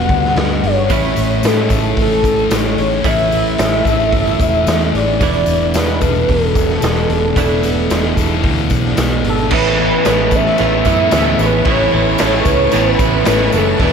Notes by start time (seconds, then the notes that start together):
Already playing: G2 D3 G3 B3 D4 F#4 F#5
0.09 D2 D4, kick, open hi-hat
0.25 snare
0.35 D2 B3, snare, open hi-hat
0.63 G1 D4 C#5, open hi-hat
0.89 A1 A2 E3 A3 C#4 E4, kick, open hi-hat, tambourine
1.03 tambourine
1.16 A1 A3, open hi-hat, tambourine
1.31 tambourine
1.43 A2 C#4 A4, snare, open hi-hat, tambourine
1.69 A1 A2 E3 A3 A4, kick, open hi-hat, tambourine
1.97 A1 A3, kick, open hi-hat, tambourine
2.01 A4
2.12 tambourine
2.24 A1 C#4, kick, open hi-hat, tambourine
2.39 tambourine
2.50 A1 E3, snare, open hi-hat, tambourine
2.55 C#5
2.65 tambourine
2.78 A1 C#4, open hi-hat, tambourine
3.03 A1 A2 E3 A3 C#4 E4, kick, open hi-hat, tambourine
3.08 E5
3.19 tambourine
3.32 A3 E5, open hi-hat, tambourine
3.47 tambourine
3.58 A1 C#4, snare, open hi-hat, tambourine
3.85 A1 E3 A3 A4, kick, open hi-hat, tambourine
3.89 A2
4.00 tambourine
4.12 G1 A3, kick, open hi-hat, tambourine
4.27 tambourine
4.39 E1 C#4, kick, open hi-hat, tambourine
4.55 tambourine
4.66 E2 E3, snare, open hi-hat, tambourine
4.81 tambourine
4.93 A1 C#4 D5, open hi-hat, tambourine
5.20 E1 E2 B2 E3 A3 B3 D4 E4, kick, open hi-hat, tambourine
5.34 tambourine
5.46 E1 B3, open hi-hat, tambourine
5.61 tambourine
5.74 E2 D4 B4, snare, open hi-hat, tambourine
6.01 E1 E2 B2 E3 A4, kick, open hi-hat, tambourine
6.15 tambourine
6.28 E1 B3 A4, kick, open hi-hat, tambourine
6.42 tambourine
6.55 E1 D4, kick, open hi-hat, tambourine
6.70 snare, tambourine
6.82 E1 B3, snare, open hi-hat, tambourine
6.96 tambourine
7.10 E1 D4, open hi-hat, tambourine
7.36 E1 E2 B2 E3 A3 B3 D4 E4, kick, open hi-hat, tambourine
7.63 B3, open hi-hat, tambourine
7.89 E1 D4, snare, open hi-hat, tambourine
8.16 E1 E2 B2 E3 A4, kick, open hi-hat, tambourine
8.43 D2 B3, kick, open hi-hat, tambourine
8.58 tambourine
8.70 B1 D4, kick, open hi-hat, tambourine
8.85 snare
8.97 B1 B3, snare, open hi-hat, tambourine
9.24 G#1 D4, open hi-hat, tambourine
9.29 A4
9.39 tambourine
9.51 A1 A2 E3 A3 B3 C#4 E4 B4 A5 C#6, kick, crash
9.57 B4
9.77 E3 A3 B3 C#4 E4
9.81 B3
10.03 A1 A2 E3 A3 B3 C#4 E4 A4, snare, tambourine, crash
10.31 E3 A3 C#4, kick, tambourine
10.36 E5
10.46 snare
10.58 A1 A2 E3 A3 B3 C#4 E4, tambourine, crash
10.64 E5
10.85 F#2 E3 A3 B3 C#4 E4, kick, snare, tambourine
10.89 A2
11.11 D2 A2 E3 B3 C#4, snare, tambourine, crash
11.15 A3 E4
11.39 A1 E3 A3 B3 C#4 E4 A4, tambourine
11.45 B4
11.65 A1 A2 E3 A3 B3 C#4 E4, kick, crash
11.71 C#5
11.92 A1 E3 A3 B3 C#4 E4
12.18 A1 A2 E3 A3 B3 C#4 E4 A4, snare, tambourine, crash
12.27 C#5
12.45 C#2 E3 A3 C#4, kick, tambourine
12.71 A1 A2 E3 A3 B3 C#4 E4, tambourine, crash
12.78 B4
12.99 A1 A2 E3 A3 B3 C#4 E4, kick, tambourine
13.24 A1 A2 E3 A3 B3 C#4 E4, snare, tambourine, crash
13.52 F#1 E3 A3 B3 C#4 E4 A4, tambourine
13.57 A4
13.78 E1 E2 B2 E3 A3 D5 E6, kick, crash
13.82 D4 E4 B4